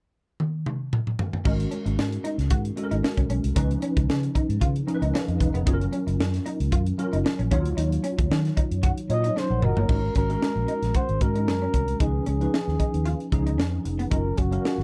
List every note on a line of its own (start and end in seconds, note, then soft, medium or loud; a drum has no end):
0.40 high tom medium
0.66 mid tom medium
0.93 mid tom medium
1.07 mid tom medium
1.19 floor tom loud
1.33 floor tom medium
1.45 1.64 G#1 loud
1.45 2.23 G#3 medium
1.45 2.24 C#4 medium
1.45 1.55 D#4 medium
1.45 2.24 F#4 medium
1.45 2.24 A#4 medium
1.45 kick loud
1.45 crash medium
1.60 closed hi-hat medium
1.71 1.81 C#4 medium
1.71 closed hi-hat medium
1.86 1.94 G#1 medium
1.86 muted clean electric guitar stroke soft
1.86 closed hi-hat soft
1.97 2.17 G#2 medium
1.97 snare loud
2.12 closed hi-hat soft
2.24 2.34 D#4 medium
2.24 closed hi-hat medium
2.38 2.52 C#2 medium
2.38 snare soft
2.38 closed hi-hat soft
2.50 2.70 G#2 loud
2.50 2.60 F#4 medium
2.50 kick medium
2.50 closed hi-hat medium
2.65 closed hi-hat medium
2.76 3.36 G#3 medium
2.76 3.36 C#4 medium
2.76 3.36 F#4 medium
2.76 2.84 A4 medium
2.76 muted clean electric guitar stroke soft
2.76 closed hi-hat medium
2.84 3.40 A#4 medium
2.91 3.00 G#1 medium
2.91 2.99 D#4 medium
2.91 closed hi-hat soft
3.03 muted clean electric guitar stroke soft
3.03 snare loud
3.17 3.26 C2 medium
3.17 3.26 C#4 medium
3.17 kick medium
3.17 closed hi-hat soft
3.30 3.40 B1 medium
3.30 3.39 C#4 medium
3.30 closed hi-hat medium
3.44 3.53 C2 medium
3.44 closed hi-hat medium
3.56 3.75 C#2 loud
3.56 4.34 F3 medium
3.56 4.35 C#4 medium
3.56 3.66 D#4 medium
3.56 4.35 D#4 medium
3.56 4.35 B4 medium
3.56 kick loud
3.56 closed hi-hat medium
3.71 closed hi-hat soft
3.82 3.92 C#4 medium
3.82 closed hi-hat medium
3.97 4.05 C#2 medium
3.97 muted clean electric guitar stroke soft
3.97 kick loud
3.97 closed hi-hat soft
4.09 4.28 C#3 loud
4.09 snare loud
4.23 closed hi-hat soft
4.35 4.45 D#4 medium
4.35 kick medium
4.35 closed hi-hat medium
4.49 4.58 G#2 medium
4.49 closed hi-hat medium
4.61 4.81 C#3 loud
4.61 4.71 F4 medium
4.61 kick medium
4.61 closed hi-hat medium
4.76 closed hi-hat medium
4.87 5.47 F3 medium
4.87 5.14 C#4 medium
4.87 5.14 D#4 medium
4.87 4.95 A#4 medium
4.87 muted clean electric guitar stroke soft
4.87 closed hi-hat medium
4.94 5.17 B4 medium
5.02 5.11 C#2 medium
5.02 5.10 D#4 medium
5.02 closed hi-hat soft
5.14 5.24 C#4 medium
5.14 5.28 G#4 soft
5.14 5.28 F5 medium
5.14 snare loud
5.28 5.37 F2 medium
5.28 5.40 D#5 medium
5.28 closed hi-hat soft
5.40 5.51 E1 medium
5.40 5.54 D#4 medium
5.40 5.54 B4 medium
5.40 muted clean electric guitar stroke soft
5.40 kick medium
5.40 closed hi-hat medium
5.54 5.63 F1 medium
5.54 5.63 B3 medium
5.54 5.80 B3 medium
5.54 5.66 G#4 medium
5.54 closed hi-hat medium
5.66 5.86 F#1 loud
5.66 6.45 F#3 medium
5.66 6.45 C#4 medium
5.66 5.76 D#4 medium
5.66 6.45 F4 medium
5.66 5.74 G#4 medium
5.66 kick loud
5.66 closed hi-hat medium
5.73 6.49 A#4 medium
5.81 closed hi-hat soft
5.93 6.02 C#4 medium
5.93 closed hi-hat medium
6.07 6.16 F#1 medium
6.07 muted clean electric guitar stroke soft
6.07 closed hi-hat medium
6.19 6.38 F#2 medium
6.19 snare loud
6.34 snare soft
6.34 closed hi-hat soft
6.46 6.55 D#4 medium
6.46 closed hi-hat medium
6.60 6.69 C#2 medium
6.60 closed hi-hat medium
6.72 6.91 F#2 loud
6.72 6.82 F4 medium
6.72 kick medium
6.72 closed hi-hat medium
6.87 closed hi-hat soft
6.98 7.50 F#3 medium
6.98 7.51 C#4 medium
6.98 7.51 F4 medium
6.98 7.52 A#4 medium
6.98 muted clean electric guitar stroke soft
6.98 closed hi-hat medium
7.13 7.22 F#1 medium
7.13 7.21 D#4 medium
7.13 closed hi-hat medium
7.25 muted clean electric guitar stroke soft
7.25 snare loud
7.39 7.48 A#1 medium
7.39 7.47 C#4 medium
7.39 closed hi-hat soft
7.51 7.66 D#2 loud
7.51 8.36 F#3 medium
7.51 7.61 C#4 medium
7.51 8.36 D#4 medium
7.51 8.37 F4 medium
7.51 8.37 C#5 loud
7.51 kick loud
7.51 closed hi-hat medium
7.66 7.74 D2 medium
7.66 closed hi-hat medium
7.77 7.97 D#2 loud
7.77 7.87 D#4 medium
7.77 closed hi-hat loud
7.92 closed hi-hat medium
8.04 8.14 C#4 medium
8.04 closed hi-hat medium
8.18 8.27 D#2 medium
8.18 muted clean electric guitar stroke soft
8.18 kick medium
8.18 closed hi-hat soft
8.30 8.49 D#3 loud
8.30 snare loud
8.45 snare soft
8.45 closed hi-hat soft
8.57 8.67 D#4 medium
8.57 kick medium
8.57 closed hi-hat medium
8.71 8.90 F#2 medium
8.71 closed hi-hat medium
8.83 8.93 F#4 medium
8.83 kick medium
8.83 closed hi-hat medium
8.98 closed hi-hat medium
9.09 9.29 A#2 medium
9.09 9.69 F#3 medium
9.09 9.69 D#4 medium
9.09 9.36 F4 medium
9.09 9.36 C#5 medium
9.09 9.40 D#5 loud
9.09 muted clean electric guitar stroke soft
9.09 closed hi-hat medium
9.24 9.32 D#4 medium
9.24 closed hi-hat soft
9.36 9.46 C#4 medium
9.36 9.66 C5 medium
9.36 snare medium
9.50 9.59 A#1 medium
9.50 9.63 A#4 medium
9.50 9.62 F#5 medium
9.62 9.73 F#1 medium
9.62 9.77 F#4 medium
9.62 10.16 A#4 medium
9.62 9.76 D#5 medium
9.62 muted clean electric guitar stroke soft
9.62 mid tom medium
9.77 9.85 G1 medium
9.77 9.85 A#3 medium
9.77 10.03 F4 soft
9.77 10.02 C#5 medium
9.77 floor tom medium
9.89 10.08 G#1 loud
9.89 10.19 G#3 medium
9.89 10.19 C#4 medium
9.89 9.99 D#4 medium
9.89 10.19 F#4 medium
9.89 10.19 A#4 medium
9.89 kick loud
9.89 crash medium
10.15 10.35 G#1 medium
10.15 10.25 C#4 medium
10.15 10.98 A#4 medium
10.15 kick medium
10.15 closed hi-hat medium
10.29 10.98 G#3 medium
10.29 10.98 C#4 medium
10.29 10.98 F#4 medium
10.29 10.98 A#4 medium
10.29 muted clean electric guitar stroke soft
10.29 closed hi-hat soft
10.42 snare loud
10.56 10.65 A#1 medium
10.68 10.78 D#4 medium
10.68 closed hi-hat medium
10.82 10.91 A#1 medium
10.82 snare soft
10.82 closed hi-hat medium
10.94 11.05 F#4 medium
10.94 11.24 C5 medium
10.94 kick medium
10.94 closed hi-hat medium
11.09 11.18 G#1 medium
11.09 closed hi-hat soft
11.21 11.47 G#2 medium
11.21 11.81 G#3 medium
11.21 11.81 C#4 medium
11.21 11.81 F#4 medium
11.21 11.81 A#4 medium
11.21 12.04 A#4 medium
11.21 muted clean electric guitar stroke soft
11.21 kick medium
11.21 closed hi-hat medium
11.35 11.44 D#4 medium
11.35 closed hi-hat medium
11.47 11.66 F#2 medium
11.47 muted clean electric guitar stroke soft
11.47 snare loud
11.62 11.70 C#4 medium
11.74 11.93 C2 medium
11.74 11.84 C#4 medium
11.74 kick medium
11.74 closed hi-hat medium
11.88 closed hi-hat medium
12.00 12.19 C#2 medium
12.00 12.30 F3 medium
12.00 12.30 C#4 medium
12.00 12.10 D#4 medium
12.00 12.30 D#4 medium
12.00 12.28 G#4 medium
12.00 12.30 B4 medium
12.00 kick loud
12.00 closed hi-hat medium
12.26 12.46 C#2 medium
12.26 12.36 C#4 medium
12.26 13.29 G#4 medium
12.26 closed hi-hat medium
12.41 13.09 F3 medium
12.41 13.09 C#4 medium
12.41 13.09 D#4 medium
12.41 13.09 B4 medium
12.41 muted clean electric guitar stroke soft
12.41 closed hi-hat soft
12.54 snare loud
12.68 12.76 D#2 medium
12.68 snare soft
12.79 12.89 D#4 medium
12.79 kick medium
12.79 closed hi-hat medium
12.94 13.13 D#2 medium
12.94 closed hi-hat medium
13.05 13.15 F4 medium
13.05 closed hi-hat medium
13.20 closed hi-hat soft
13.32 13.59 C#2 medium
13.32 13.92 F3 medium
13.32 13.92 C#4 medium
13.32 13.92 D#4 medium
13.32 13.92 G#4 medium
13.32 muted clean electric guitar stroke soft
13.32 kick medium
13.32 closed hi-hat medium
13.47 13.55 D#4 medium
13.47 closed hi-hat soft
13.58 13.78 F2 loud
13.58 13.68 C#4 medium
13.58 snare loud
13.85 14.04 F1 medium
13.85 muted clean electric guitar stroke soft
13.85 closed hi-hat medium
13.99 14.07 B3 medium
13.99 closed hi-hat soft
14.11 14.31 F#1 loud
14.11 14.41 F#3 medium
14.11 14.41 C#4 medium
14.11 14.21 D#4 medium
14.11 14.41 F4 medium
14.11 14.41 A#4 medium
14.11 14.40 A#4 medium
14.11 kick loud
14.11 closed hi-hat medium
14.37 14.57 F#1 medium
14.37 14.47 C#4 medium
14.37 14.84 F#4 medium
14.37 kick medium
14.37 closed hi-hat medium
14.52 14.84 F#3 medium
14.52 14.84 C#4 medium
14.52 14.84 A#4 medium
14.52 14.84 F5 medium
14.52 muted clean electric guitar stroke soft
14.52 closed hi-hat soft
14.65 snare loud
14.78 14.84 G#1 medium
14.78 snare soft